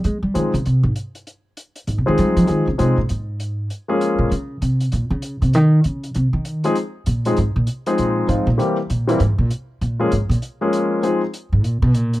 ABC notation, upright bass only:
X:1
M:4/4
L:1/8
Q:"Swing" 1/4=196
K:Fm
V:1 name="Upright bass" clef=bass
A, G, E, D, C, A,, z2 | z4 (3A,, C, E, G, F, | E, D, C, B,, A,,4 | z3 B,, D,2 C,2 |
B,, D,2 C, E,2 D,2 | C, E,2 z3 B,,2 | A,, B,, z2 B,,2 A,, B,, | z2 B,,2 A,, B,, z2 |
B,,2 A,, B,, z4 | z3 A,, B,, =B,, _B,,2 |]